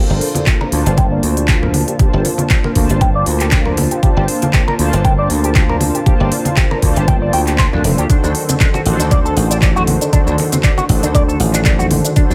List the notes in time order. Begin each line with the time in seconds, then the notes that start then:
Already playing: A#3 D4 F4 A4 C5
0.10 G1 G4
0.21 open hi-hat
0.35 F4, closed hi-hat, high conga
0.46 G4, kick, clap, closed hi-hat
0.61 A#4, muted conga
0.71 D2 A#3 D4 F4 C5 A5, open hi-hat
0.86 G1 G4, closed hi-hat, muted conga
0.97 G5, kick, closed hi-hat, high conga
1.12 D5
1.23 D2, open hi-hat
1.37 G4, closed hi-hat
1.48 G4, kick, clap, closed hi-hat
1.63 A#4, low conga
1.74 open hi-hat, high conga
1.88 G4, closed hi-hat
1.98 A#3 D4 G4 C5 A5, muted slap bass stroke, kick, closed hi-hat
2.13 G1 G4
2.25 open hi-hat, muted conga
2.38 F4, closed hi-hat, high conga
2.50 G4, kick, clap, closed hi-hat
2.64 A#4, muted conga
2.75 D2 A#3 D4 F4 C5 A5, kick, open hi-hat
2.89 G1 G4, closed hi-hat, muted conga
3.01 G5, kick, closed hi-hat, high conga
3.15 D5
3.26 D2, open hi-hat
3.40 G4, clap, closed hi-hat
3.51 G4, kick, clap, closed hi-hat
3.65 A#4, low conga
3.77 open hi-hat, high conga
3.91 G4, closed hi-hat
4.02 A#3 D4 F4 G4 C5 A5, muted slap bass stroke, kick, closed hi-hat
4.17 G1 G4
4.28 open hi-hat
4.42 F4, closed hi-hat, high conga
4.53 G4, kick, clap, closed hi-hat
4.68 A#4, muted conga
4.78 D2 A#3 D4 F4 C5 A5, open hi-hat
4.93 G1 G4, closed hi-hat, muted conga
5.05 G5, kick, closed hi-hat, high conga
5.19 D5
5.30 D2, open hi-hat
5.44 G4, closed hi-hat
5.55 G4, kick, clap, closed hi-hat
5.69 A#4, low conga
5.80 open hi-hat, high conga
5.95 G4, closed hi-hat
6.06 A#3 D4 F4 G4 C5 A5, muted slap bass stroke, kick, closed hi-hat
6.20 G1 G4
6.32 open hi-hat, muted conga
6.45 F4, closed hi-hat, high conga
6.57 G4, kick, clap, closed hi-hat
6.71 A#4, muted conga
6.82 D2 A#3 D4 F4 C5 A5, kick, open hi-hat
6.96 G1 G4, closed hi-hat, muted conga
7.08 G5, kick, closed hi-hat, high conga
7.22 D5
7.33 D2 G5, open hi-hat
7.47 G4, clap, closed hi-hat
7.58 C5, kick, clap, closed hi-hat
7.73 D2 D4, low conga
7.84 F1 A#3 D4 F4 A4 C5, open hi-hat, high conga
7.98 D2 G4, closed hi-hat
8.09 D#3 D4 F#4 A4 C5, kick, closed hi-hat, cabasa
8.24 D2 D4, cabasa
8.35 open hi-hat
8.49 C4, closed hi-hat, high conga, cabasa
8.60 D4, kick, clap, closed hi-hat, cabasa
8.74 F#4, muted conga, cabasa
8.85 A1 D#3 D4 F#4 A4 C5, open hi-hat
9.00 D2 D4, closed hi-hat, muted conga, cabasa
9.11 D5, kick, closed hi-hat, high conga, cabasa
9.25 A4, cabasa
9.37 A1, open hi-hat
9.51 D4, closed hi-hat, cabasa
9.62 D4, kick, clap, closed hi-hat, cabasa
9.76 F#4, low conga, cabasa
9.87 open hi-hat, high conga
10.01 D4, closed hi-hat, cabasa
10.12 D#3 D4 F#4 A4 C5, muted slap bass stroke, kick, closed hi-hat, cabasa
10.27 D2 D4, cabasa
10.38 open hi-hat, muted conga
10.52 C4, closed hi-hat, high conga, cabasa
10.63 D4, kick, clap, closed hi-hat, cabasa
10.78 F#4, muted conga, cabasa
10.88 A1 D#3 D4 F#4 A4 C5, kick, open hi-hat
11.03 D2 D4, closed hi-hat, muted conga, cabasa
11.14 D5, kick, closed hi-hat, high conga, cabasa
11.28 A4, cabasa
11.40 A1, open hi-hat
11.53 D4, clap, closed hi-hat, cabasa
11.65 D4, kick, clap, closed hi-hat, cabasa
11.79 F#4, low conga, cabasa
11.91 open hi-hat, high conga
12.05 D4, closed hi-hat, cabasa
12.15 D#3 D4 F#4 A4 C5, muted slap bass stroke, kick, closed hi-hat, cabasa
12.30 D2 D4, cabasa